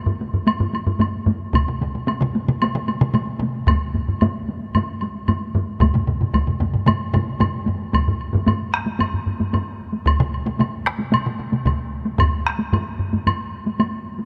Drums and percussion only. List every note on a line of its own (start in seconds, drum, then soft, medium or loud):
0.06 taiko low-mid loud
0.06 taiko high soft
0.21 taiko high medium
0.34 taiko low-mid medium
0.34 taiko high soft
0.47 taiko high medium
0.47 high woodblock medium
0.60 taiko low-mid loud
0.60 taiko high soft
0.73 taiko high medium
0.73 high woodblock soft
0.87 taiko low-mid loud
0.99 taiko low-mid medium
0.99 taiko high medium
0.99 high woodblock soft
1.15 taiko high soft
1.26 taiko low-mid loud
1.26 taiko high medium
1.41 taiko high soft
1.53 taiko medium
1.53 taiko mid medium
1.53 taiko high medium
1.53 high woodblock medium
1.68 taiko mid medium
1.81 taiko mid medium
1.81 taiko high medium
1.95 taiko mid medium
1.95 taiko high soft
2.08 taiko high medium
2.08 high woodblock soft
2.22 taiko mid loud
2.22 taiko high soft
2.35 taiko high medium
2.48 taiko mid loud
2.48 taiko high soft
2.62 taiko high medium
2.62 high woodblock medium
2.75 taiko mid loud
2.75 taiko high soft
2.88 taiko high medium
2.88 high woodblock soft
3.01 taiko mid loud
3.01 taiko high soft
3.14 taiko mid medium
3.14 taiko high medium
3.14 high woodblock soft
3.29 taiko high soft
3.40 taiko mid medium
3.40 taiko high medium
3.56 taiko high soft
3.67 taiko medium
3.67 taiko low-mid medium
3.67 taiko high medium
3.67 high woodblock medium
3.94 taiko low-mid medium
3.94 taiko high medium
4.08 taiko low-mid medium
4.08 taiko high soft
4.21 taiko low-mid loud
4.21 taiko high medium
4.21 high woodblock soft
4.35 taiko high soft
4.49 taiko high medium
4.61 taiko high soft
4.75 taiko low-mid medium
4.75 taiko high medium
4.75 high woodblock soft
4.89 taiko high soft
5.01 taiko high medium
5.01 high woodblock soft
5.15 taiko high soft
5.28 taiko low-mid loud
5.28 taiko high medium
5.28 high woodblock soft
5.42 taiko high soft
5.55 taiko low-mid loud
5.55 taiko high medium
5.69 taiko high soft
5.80 taiko loud
5.80 taiko low-mid medium
5.80 taiko mid medium
5.80 taiko high medium
5.80 high woodblock soft
5.94 taiko low-mid medium
5.94 taiko mid medium
5.94 taiko high medium
6.07 taiko low-mid medium
6.07 taiko mid medium
6.07 taiko high medium
6.21 taiko low-mid medium
6.21 taiko mid medium
6.21 taiko high soft
6.34 taiko medium
6.34 taiko high medium
6.34 high woodblock soft
6.47 taiko low-mid medium
6.47 taiko mid medium
6.47 taiko high soft
6.61 taiko low-mid medium
6.61 taiko mid medium
6.61 taiko high medium
6.74 taiko low-mid medium
6.74 taiko mid medium
6.74 taiko high soft
6.87 taiko low-mid medium
6.87 taiko mid loud
6.87 taiko high medium
6.87 high woodblock medium
7.01 taiko high soft
7.14 taiko low-mid loud
7.14 taiko mid loud
7.14 taiko high medium
7.14 high woodblock soft
7.28 taiko high soft
7.40 taiko low-mid medium
7.40 taiko mid medium
7.40 taiko high medium
7.40 high woodblock soft
7.53 taiko high soft
7.66 taiko low-mid medium
7.66 taiko mid medium
7.66 taiko high medium
7.80 taiko high soft
7.93 taiko medium
7.93 taiko high medium
7.93 high woodblock soft
8.08 taiko low-mid medium
8.21 high woodblock soft
8.33 taiko low-mid loud
8.33 taiko high medium
8.46 taiko low-mid loud
8.46 taiko high medium
8.46 high woodblock soft
8.74 taiko rim medium
8.86 taiko high medium
8.99 taiko low-mid medium
8.99 taiko high medium
8.99 high woodblock soft
9.14 taiko low-mid medium
9.26 taiko low-mid medium
9.40 taiko low-mid medium
9.40 taiko high medium
9.53 taiko low-mid loud
9.53 taiko high medium
9.53 high woodblock soft
9.93 taiko high soft
10.06 taiko loud
10.06 taiko high medium
10.06 high woodblock medium
10.20 taiko mid loud
10.34 high woodblock soft
10.46 taiko mid medium
10.46 taiko high medium
10.59 taiko mid medium
10.59 taiko high medium
10.59 high woodblock soft
10.87 taiko rim medium
10.99 taiko high medium
11.12 taiko mid medium
11.12 taiko high medium
11.12 high woodblock medium
11.26 taiko mid medium
11.40 taiko mid medium
11.52 taiko mid medium
11.52 taiko high medium
11.65 taiko medium
11.65 taiko mid medium
11.65 taiko high medium
11.65 high woodblock soft
12.05 taiko high medium
12.18 taiko loud
12.18 taiko low-mid loud
12.18 taiko high medium
12.18 high woodblock medium
12.47 taiko rim medium
12.47 high woodblock soft
12.59 taiko high medium
12.73 taiko low-mid loud
12.73 taiko high medium
12.73 high woodblock soft
12.99 taiko low-mid medium
13.13 taiko low-mid medium
13.13 taiko high medium
13.27 taiko low-mid loud
13.27 taiko high medium
13.27 high woodblock medium
13.66 taiko high medium
13.80 taiko high medium
13.80 high woodblock soft
14.19 taiko high soft